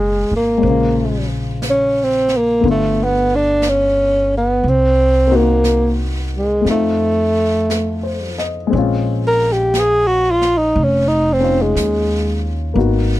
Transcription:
Already playing: upright bass F#1, grand piano B2 F#3 G#3 C#4 D#4 F4, tenor saxophone G#3
0.31 upright bass G#1
0.36 tenor saxophone A#3
0.58 grand piano G#3 C5
0.62 upright bass A#1, brush sweep
0.66 grand piano C#3 F4
1.62 brush sweep, snare, hi-hat pedal
1.70 tenor saxophone C#4
2.04 tenor saxophone C4
2.28 snare
2.37 tenor saxophone A#3
2.61 upright bass G1, grand piano A3 B3, brush sweep
2.65 grand piano D3 F4
2.70 tenor saxophone A3
3.04 tenor saxophone B3
3.35 tenor saxophone D4
3.62 brush sweep, snare, hi-hat pedal
3.69 tenor saxophone C#4
4.37 tenor saxophone B3
4.63 upright bass C2, brush sweep
4.69 tenor saxophone C4
5.27 grand piano A#3 C4 D#4
5.32 grand piano F#4
5.36 tenor saxophone A#3
5.64 brush sweep, snare, hi-hat pedal
6.37 tenor saxophone G#3
6.61 upright bass F2, grand piano A3 C4
6.66 grand piano D#4, brush sweep, snare
6.70 tenor saxophone A3, grand piano F4
7.70 grand piano A4, brush sweep, snare, hi-hat pedal
8.03 grand piano C5
8.38 grand piano D#5, snare
8.67 grand piano G#3 C4
8.73 upright bass A#1, grand piano C#4, brush sweep
8.78 grand piano F4
9.27 tenor saxophone A#4
9.52 tenor saxophone G4
9.74 brush sweep, snare, hi-hat pedal
9.79 tenor saxophone G#4
10.07 tenor saxophone F#4
10.31 tenor saxophone F4
10.42 snare
10.57 tenor saxophone D#4
10.76 upright bass F1, brush sweep
10.83 tenor saxophone C#4
11.08 tenor saxophone D#4
11.33 tenor saxophone C4
11.40 grand piano C#4 D#4 F4
11.62 tenor saxophone G#3
11.75 upright bass D#2, brush sweep, snare, hi-hat pedal
12.74 upright bass G#1, grand piano A#3 B3 D#4, brush sweep
12.78 grand piano F#4

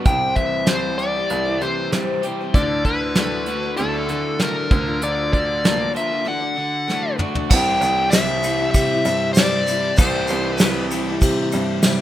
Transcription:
0.05 grand piano C2, steel-string acoustic guitar C3 G3 C4 E4, lead electric guitar G5, kick, closed hi-hat
0.09 steel-string acoustic guitar C5
0.35 overdriven electric guitar E3, lead electric guitar E5, kick, closed hi-hat
0.66 steel-string acoustic guitar C3 G3 C4 E4, lead electric guitar C5, snare, closed hi-hat
0.71 steel-string acoustic guitar C5
0.98 steel-string acoustic guitar G3 C4, overdriven electric guitar G4, lead electric guitar D5, closed hi-hat
1.02 steel-string acoustic guitar E4 C5
1.16 steel-string acoustic guitar C4 E4 C5
1.28 grand piano C2, overdriven electric guitar E4, closed hi-hat
1.46 steel-string acoustic guitar C4 E4 C5
1.60 grand piano C3, overdriven electric guitar E3, steel-string acoustic guitar G3 C4 E4 C5, lead electric guitar C5, closed hi-hat
1.92 steel-string acoustic guitar C3 G3 C4 E4 C5, snare, closed hi-hat
2.22 steel-string acoustic guitar G3 C4 E4, overdriven electric guitar G4, closed hi-hat
2.27 steel-string acoustic guitar C5
2.41 steel-string acoustic guitar C4 E4 C5
2.54 grand piano D2, steel-string acoustic guitar D3 E3, lead electric guitar D5, kick, closed hi-hat
2.58 steel-string acoustic guitar A3 D4 F#4 D5
2.85 overdriven electric guitar D3, lead electric guitar B4, kick, closed hi-hat
3.15 steel-string acoustic guitar D3 E3 A3 D4 F#4 D5, snare, closed hi-hat
3.46 steel-string acoustic guitar A3 D4 F#4, closed hi-hat
3.51 steel-string acoustic guitar D5
3.63 steel-string acoustic guitar A3 D4 F#4 D5
3.77 grand piano D2, overdriven electric guitar E4, lead electric guitar A4, closed hi-hat
3.94 steel-string acoustic guitar A3 D4 F#4 D5
4.08 overdriven electric guitar D3, grand piano D3, steel-string acoustic guitar A3 D4 F#4, closed hi-hat
4.12 steel-string acoustic guitar D5
4.39 steel-string acoustic guitar D3 E3 D4 F#4 D5, overdriven electric guitar A3, lead electric guitar A#4, snare, closed hi-hat
4.71 grand piano D2, overdriven electric guitar D3, steel-string acoustic guitar F3 D4 F4 A#4, kick, closed hi-hat
4.86 steel-string acoustic guitar D4 F4 A#4
5.02 steel-string acoustic guitar D3 F3 D4 F4 A#4, lead electric guitar D5, closed hi-hat
5.33 overdriven electric guitar D3, lead electric guitar D5, kick, closed hi-hat
5.64 steel-string acoustic guitar D3 F3 D4 F4 A#4, overdriven electric guitar A#3, snare, closed hi-hat
5.94 steel-string acoustic guitar F3 D4 F4 A#4, lead electric guitar E5, closed hi-hat
6.10 steel-string acoustic guitar D4 F4 A#4
6.25 steel-string acoustic guitar D3 E3 A3 D4 F#4 D5, lead electric guitar F#5
6.40 steel-string acoustic guitar A3 D4 F#4 D5
6.56 overdriven electric guitar D3, steel-string acoustic guitar A3 D4 F#4 D5
6.88 steel-string acoustic guitar D3 E3 A3 D4 F#4 D5, snare
7.18 steel-string acoustic guitar A3 D4 F#4 D5, mid tom
7.35 steel-string acoustic guitar A3 D4 F#4 D5, floor tom
7.50 grand piano C2, steel-string acoustic guitar C3 G3 C4 E4 G4, overdriven electric guitar E3, tonewheel organ G4 C5 E5 C6, lead electric guitar G5, kick, crash, shaker
7.81 grand piano C2, steel-string acoustic guitar G3 C4, ride, shaker
7.86 steel-string acoustic guitar E4 G4
8.10 steel-string acoustic guitar C3 G3, lead electric guitar E5, snare, ride, shaker
8.15 steel-string acoustic guitar C4 E4 G4
8.43 steel-string acoustic guitar G3 C4 E4, ride, shaker
8.47 steel-string acoustic guitar G4
8.59 steel-string acoustic guitar C4 E4 G4
8.71 grand piano C3, lead electric guitar E5, kick, ride, shaker
8.91 steel-string acoustic guitar C4 E4 G4
9.05 grand piano G2, steel-string acoustic guitar G3 C4 E4 G4, ride, shaker
9.33 steel-string acoustic guitar C3, lead electric guitar D5, snare, ride, shaker
9.37 steel-string acoustic guitar G3 C4 E4 G4
9.67 steel-string acoustic guitar G3 C4 E4 G4, ride, shaker
9.97 grand piano C2, steel-string acoustic guitar C3 G3 C4 E4 G4, overdriven electric guitar E3, lead electric guitar C5, tonewheel organ B5, kick, ride, shaker
10.28 grand piano C2, steel-string acoustic guitar G3 C4, ride, shaker
10.33 steel-string acoustic guitar E4 G4
10.57 steel-string acoustic guitar C3, lead electric guitar B4, snare, ride, shaker
10.61 steel-string acoustic guitar G3 C4 E4 G4
10.91 steel-string acoustic guitar G3 C4 E4, ride, shaker
10.95 steel-string acoustic guitar G4
11.08 steel-string acoustic guitar C4 E4 G4
11.21 grand piano C3, kick, ride, shaker
11.39 steel-string acoustic guitar C4 E4 G4
11.52 grand piano G2, steel-string acoustic guitar G3 C4 E4, ride, shaker
11.56 steel-string acoustic guitar G4
11.82 steel-string acoustic guitar C3 G3 C4 E4, snare, ride, shaker
11.87 steel-string acoustic guitar G4

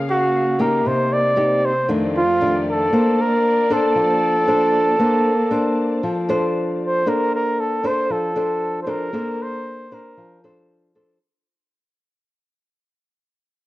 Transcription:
Already playing: nylon-string guitar C#3 A#3 G#4, string section A#3 G#4 F5
0.10 flugelhorn F#4
0.59 nylon-string guitar A#3 D#4 G4, flugelhorn A#4
0.85 nylon-string guitar C3, string section C4 C5, flugelhorn C5
1.13 flugelhorn D5
1.36 nylon-string guitar A#3 D#4 G4
1.65 flugelhorn C5
1.88 nylon-string guitar F2 D#3 A3 D4, string section A3 F4 G4 D5
2.17 flugelhorn F4
2.41 nylon-string guitar D#3 A3 D4
2.70 flugelhorn A4
2.92 string section A#3 C5 A5, nylon-string guitar A#3 D4 C5
3.21 flugelhorn A#4
3.70 nylon-string guitar D4 A4 C5, flugelhorn A4
3.95 nylon-string guitar F3
4.47 nylon-string guitar D4 A4 C5
4.99 nylon-string guitar A#3 D4 A4 C5
5.51 nylon-string guitar D4 A4 C5
6.03 nylon-string guitar F3
6.29 nylon-string guitar D4 A4 C5
6.83 flugelhorn C5
7.06 nylon-string guitar A#3 D4 A4 C5, flugelhorn A#4
7.35 flugelhorn A#4
7.60 flugelhorn A4
7.83 nylon-string guitar D4 A4 C5, flugelhorn C5
8.10 nylon-string guitar F3, flugelhorn A4
8.36 nylon-string guitar D4 A4 C5
8.83 nylon-string guitar D4, flugelhorn C5
8.87 nylon-string guitar A4 C5, flugelhorn A#4
9.13 nylon-string guitar A#3 D4 A4 C5
9.42 flugelhorn C5
9.91 nylon-string guitar D4 C5, flugelhorn A#4
10.17 nylon-string guitar F3
10.44 nylon-string guitar D4 A4 C5
10.95 nylon-string guitar D4 A4 C5

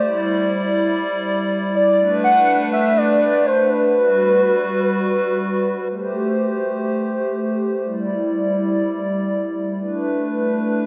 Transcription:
Already playing: soft synth lead D5
0.05 analog synth pad G3 E4 D5
1.75 soft synth lead D5
2.00 analog synth pad A3 D4 B4
2.24 soft synth lead F#5
2.73 soft synth lead E5
2.97 soft synth lead D5
3.22 soft synth lead D5
3.46 soft synth lead C5
3.70 soft synth lead B4
3.95 analog synth pad G3 F#4 B4
5.90 analog synth pad A3 G4 C5
7.85 analog synth pad G3 E4 D5
9.80 analog synth pad A3 D4 B4

